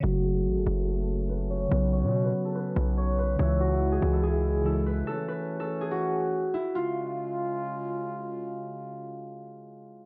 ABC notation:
X:1
M:4/4
L:1/16
Q:1/4=143
K:C#m
V:1 name="Harp"
F2 G3 A2 B A4 B2 c2 | B2 c3 B2 A B4 c2 B2 | c2 F3 G2 A G4 A2 B2 | A2 B3 A2 G F6 E2 |
^E12 z4 | z16 |]
V:2 name="Brass ensemble"
[A,C]16 | B,16 | [C,G,E]16 | [E,A,C]16 |
[C,G,^E]16- | [C,G,^E]16 |]
V:3 name="Synth keys" clef=bass
[C,F,A,F]16 | [C,F,B,F]16 | [C,E,G,E]12 [C,E,G,E]4 | z16 |
z16 | z16 |]
V:4 name="808-style bass" clef=bass
F,,,4 A,,, F,,, F,,,8- F,,,2 | B,,,3 B,,3 z4 B,,,6 | C,,6 C,,8- C,,2 | z16 |
z16 | z16 |]